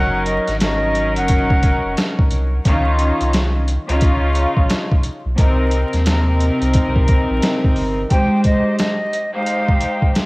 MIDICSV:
0, 0, Header, 1, 5, 480
1, 0, Start_track
1, 0, Key_signature, -4, "major"
1, 0, Tempo, 681818
1, 1868, Time_signature, 4, 2, 24, 8
1, 7222, End_track
2, 0, Start_track
2, 0, Title_t, "Flute"
2, 0, Program_c, 0, 73
2, 0, Note_on_c, 0, 78, 109
2, 164, Note_off_c, 0, 78, 0
2, 185, Note_on_c, 0, 75, 81
2, 402, Note_off_c, 0, 75, 0
2, 434, Note_on_c, 0, 75, 91
2, 799, Note_off_c, 0, 75, 0
2, 826, Note_on_c, 0, 78, 86
2, 1364, Note_off_c, 0, 78, 0
2, 5705, Note_on_c, 0, 79, 99
2, 5922, Note_off_c, 0, 79, 0
2, 5954, Note_on_c, 0, 75, 77
2, 6167, Note_off_c, 0, 75, 0
2, 6184, Note_on_c, 0, 75, 89
2, 6554, Note_off_c, 0, 75, 0
2, 6581, Note_on_c, 0, 77, 90
2, 7121, Note_off_c, 0, 77, 0
2, 7222, End_track
3, 0, Start_track
3, 0, Title_t, "String section"
3, 0, Program_c, 1, 48
3, 0, Note_on_c, 1, 54, 99
3, 0, Note_on_c, 1, 61, 93
3, 0, Note_on_c, 1, 63, 88
3, 0, Note_on_c, 1, 70, 103
3, 395, Note_off_c, 1, 54, 0
3, 396, Note_off_c, 1, 61, 0
3, 397, Note_off_c, 1, 63, 0
3, 397, Note_off_c, 1, 70, 0
3, 426, Note_on_c, 1, 54, 105
3, 428, Note_on_c, 1, 61, 98
3, 430, Note_on_c, 1, 63, 90
3, 432, Note_on_c, 1, 70, 109
3, 1782, Note_off_c, 1, 54, 0
3, 1783, Note_off_c, 1, 61, 0
3, 1784, Note_off_c, 1, 63, 0
3, 1785, Note_off_c, 1, 70, 0
3, 1874, Note_on_c, 1, 51, 107
3, 1875, Note_on_c, 1, 61, 95
3, 1877, Note_on_c, 1, 63, 93
3, 1879, Note_on_c, 1, 65, 110
3, 2548, Note_off_c, 1, 51, 0
3, 2549, Note_off_c, 1, 61, 0
3, 2550, Note_off_c, 1, 63, 0
3, 2551, Note_off_c, 1, 65, 0
3, 2735, Note_on_c, 1, 49, 98
3, 2736, Note_on_c, 1, 61, 97
3, 2737, Note_on_c, 1, 63, 98
3, 2739, Note_on_c, 1, 65, 116
3, 3496, Note_off_c, 1, 49, 0
3, 3497, Note_off_c, 1, 61, 0
3, 3497, Note_off_c, 1, 63, 0
3, 3499, Note_off_c, 1, 65, 0
3, 3781, Note_on_c, 1, 48, 97
3, 3781, Note_on_c, 1, 60, 89
3, 3784, Note_on_c, 1, 63, 83
3, 3785, Note_on_c, 1, 70, 103
3, 4236, Note_off_c, 1, 48, 0
3, 4236, Note_off_c, 1, 60, 0
3, 4238, Note_off_c, 1, 63, 0
3, 4238, Note_off_c, 1, 70, 0
3, 4285, Note_on_c, 1, 48, 99
3, 4287, Note_on_c, 1, 60, 96
3, 4288, Note_on_c, 1, 63, 92
3, 4290, Note_on_c, 1, 70, 118
3, 5631, Note_off_c, 1, 48, 0
3, 5632, Note_off_c, 1, 60, 0
3, 5633, Note_off_c, 1, 63, 0
3, 5634, Note_off_c, 1, 70, 0
3, 5711, Note_on_c, 1, 56, 107
3, 5713, Note_on_c, 1, 63, 83
3, 5715, Note_on_c, 1, 67, 85
3, 5716, Note_on_c, 1, 72, 112
3, 6387, Note_off_c, 1, 56, 0
3, 6388, Note_off_c, 1, 63, 0
3, 6389, Note_off_c, 1, 67, 0
3, 6390, Note_off_c, 1, 72, 0
3, 6569, Note_on_c, 1, 56, 94
3, 6570, Note_on_c, 1, 63, 95
3, 6572, Note_on_c, 1, 67, 91
3, 6574, Note_on_c, 1, 72, 108
3, 7222, Note_off_c, 1, 56, 0
3, 7222, Note_off_c, 1, 63, 0
3, 7222, Note_off_c, 1, 67, 0
3, 7222, Note_off_c, 1, 72, 0
3, 7222, End_track
4, 0, Start_track
4, 0, Title_t, "Sub bass"
4, 0, Program_c, 2, 38
4, 0, Note_on_c, 2, 30, 109
4, 275, Note_off_c, 2, 30, 0
4, 339, Note_on_c, 2, 32, 91
4, 820, Note_on_c, 2, 30, 91
4, 830, Note_off_c, 2, 32, 0
4, 1220, Note_off_c, 2, 30, 0
4, 1301, Note_on_c, 2, 29, 92
4, 1374, Note_off_c, 2, 29, 0
4, 1629, Note_on_c, 2, 36, 95
4, 1829, Note_off_c, 2, 36, 0
4, 1869, Note_on_c, 2, 37, 118
4, 2195, Note_off_c, 2, 37, 0
4, 2260, Note_on_c, 2, 36, 91
4, 2660, Note_off_c, 2, 36, 0
4, 2740, Note_on_c, 2, 37, 97
4, 3140, Note_off_c, 2, 37, 0
4, 3216, Note_on_c, 2, 34, 89
4, 3291, Note_off_c, 2, 34, 0
4, 3700, Note_on_c, 2, 35, 85
4, 3774, Note_off_c, 2, 35, 0
4, 3789, Note_on_c, 2, 36, 113
4, 4115, Note_off_c, 2, 36, 0
4, 4178, Note_on_c, 2, 39, 93
4, 4579, Note_off_c, 2, 39, 0
4, 4659, Note_on_c, 2, 36, 96
4, 5059, Note_off_c, 2, 36, 0
4, 5140, Note_on_c, 2, 34, 95
4, 5214, Note_off_c, 2, 34, 0
4, 5468, Note_on_c, 2, 31, 95
4, 5668, Note_off_c, 2, 31, 0
4, 7222, End_track
5, 0, Start_track
5, 0, Title_t, "Drums"
5, 183, Note_on_c, 9, 42, 74
5, 253, Note_off_c, 9, 42, 0
5, 334, Note_on_c, 9, 42, 56
5, 343, Note_on_c, 9, 38, 37
5, 405, Note_off_c, 9, 42, 0
5, 414, Note_off_c, 9, 38, 0
5, 425, Note_on_c, 9, 42, 97
5, 432, Note_on_c, 9, 38, 111
5, 496, Note_off_c, 9, 42, 0
5, 503, Note_off_c, 9, 38, 0
5, 669, Note_on_c, 9, 42, 70
5, 740, Note_off_c, 9, 42, 0
5, 819, Note_on_c, 9, 42, 60
5, 889, Note_off_c, 9, 42, 0
5, 902, Note_on_c, 9, 42, 94
5, 910, Note_on_c, 9, 36, 100
5, 973, Note_off_c, 9, 42, 0
5, 981, Note_off_c, 9, 36, 0
5, 1058, Note_on_c, 9, 36, 92
5, 1129, Note_off_c, 9, 36, 0
5, 1145, Note_on_c, 9, 42, 73
5, 1151, Note_on_c, 9, 36, 107
5, 1216, Note_off_c, 9, 42, 0
5, 1221, Note_off_c, 9, 36, 0
5, 1388, Note_on_c, 9, 42, 88
5, 1394, Note_on_c, 9, 38, 111
5, 1459, Note_off_c, 9, 42, 0
5, 1465, Note_off_c, 9, 38, 0
5, 1540, Note_on_c, 9, 36, 98
5, 1611, Note_off_c, 9, 36, 0
5, 1624, Note_on_c, 9, 42, 72
5, 1694, Note_off_c, 9, 42, 0
5, 1867, Note_on_c, 9, 42, 91
5, 1869, Note_on_c, 9, 36, 114
5, 1938, Note_off_c, 9, 42, 0
5, 1940, Note_off_c, 9, 36, 0
5, 2103, Note_on_c, 9, 42, 77
5, 2174, Note_off_c, 9, 42, 0
5, 2258, Note_on_c, 9, 42, 58
5, 2328, Note_off_c, 9, 42, 0
5, 2346, Note_on_c, 9, 42, 102
5, 2353, Note_on_c, 9, 38, 115
5, 2417, Note_off_c, 9, 42, 0
5, 2424, Note_off_c, 9, 38, 0
5, 2589, Note_on_c, 9, 42, 73
5, 2660, Note_off_c, 9, 42, 0
5, 2739, Note_on_c, 9, 42, 61
5, 2810, Note_off_c, 9, 42, 0
5, 2822, Note_on_c, 9, 42, 92
5, 2830, Note_on_c, 9, 36, 101
5, 2892, Note_off_c, 9, 42, 0
5, 2901, Note_off_c, 9, 36, 0
5, 3064, Note_on_c, 9, 42, 73
5, 3134, Note_off_c, 9, 42, 0
5, 3215, Note_on_c, 9, 36, 87
5, 3286, Note_off_c, 9, 36, 0
5, 3307, Note_on_c, 9, 42, 93
5, 3312, Note_on_c, 9, 38, 108
5, 3377, Note_off_c, 9, 42, 0
5, 3383, Note_off_c, 9, 38, 0
5, 3460, Note_on_c, 9, 36, 97
5, 3531, Note_off_c, 9, 36, 0
5, 3543, Note_on_c, 9, 42, 72
5, 3614, Note_off_c, 9, 42, 0
5, 3786, Note_on_c, 9, 42, 91
5, 3789, Note_on_c, 9, 36, 116
5, 3856, Note_off_c, 9, 42, 0
5, 3860, Note_off_c, 9, 36, 0
5, 4021, Note_on_c, 9, 42, 73
5, 4092, Note_off_c, 9, 42, 0
5, 4176, Note_on_c, 9, 42, 56
5, 4184, Note_on_c, 9, 38, 37
5, 4246, Note_off_c, 9, 42, 0
5, 4255, Note_off_c, 9, 38, 0
5, 4266, Note_on_c, 9, 42, 101
5, 4273, Note_on_c, 9, 38, 110
5, 4336, Note_off_c, 9, 42, 0
5, 4343, Note_off_c, 9, 38, 0
5, 4509, Note_on_c, 9, 42, 72
5, 4579, Note_off_c, 9, 42, 0
5, 4658, Note_on_c, 9, 42, 58
5, 4729, Note_off_c, 9, 42, 0
5, 4741, Note_on_c, 9, 42, 93
5, 4750, Note_on_c, 9, 36, 100
5, 4812, Note_off_c, 9, 42, 0
5, 4821, Note_off_c, 9, 36, 0
5, 4898, Note_on_c, 9, 36, 92
5, 4968, Note_off_c, 9, 36, 0
5, 4983, Note_on_c, 9, 42, 75
5, 4990, Note_on_c, 9, 36, 105
5, 5053, Note_off_c, 9, 42, 0
5, 5061, Note_off_c, 9, 36, 0
5, 5226, Note_on_c, 9, 42, 91
5, 5232, Note_on_c, 9, 38, 108
5, 5297, Note_off_c, 9, 42, 0
5, 5303, Note_off_c, 9, 38, 0
5, 5381, Note_on_c, 9, 36, 98
5, 5451, Note_off_c, 9, 36, 0
5, 5463, Note_on_c, 9, 46, 51
5, 5533, Note_off_c, 9, 46, 0
5, 5705, Note_on_c, 9, 42, 91
5, 5709, Note_on_c, 9, 36, 110
5, 5776, Note_off_c, 9, 42, 0
5, 5779, Note_off_c, 9, 36, 0
5, 5941, Note_on_c, 9, 42, 71
5, 5948, Note_on_c, 9, 36, 90
5, 6012, Note_off_c, 9, 42, 0
5, 6018, Note_off_c, 9, 36, 0
5, 6185, Note_on_c, 9, 42, 98
5, 6191, Note_on_c, 9, 38, 108
5, 6255, Note_off_c, 9, 42, 0
5, 6262, Note_off_c, 9, 38, 0
5, 6429, Note_on_c, 9, 42, 73
5, 6499, Note_off_c, 9, 42, 0
5, 6662, Note_on_c, 9, 42, 90
5, 6733, Note_off_c, 9, 42, 0
5, 6818, Note_on_c, 9, 36, 94
5, 6889, Note_off_c, 9, 36, 0
5, 6904, Note_on_c, 9, 42, 73
5, 6974, Note_off_c, 9, 42, 0
5, 7056, Note_on_c, 9, 36, 87
5, 7126, Note_off_c, 9, 36, 0
5, 7148, Note_on_c, 9, 42, 90
5, 7154, Note_on_c, 9, 38, 105
5, 7218, Note_off_c, 9, 42, 0
5, 7222, Note_off_c, 9, 38, 0
5, 7222, End_track
0, 0, End_of_file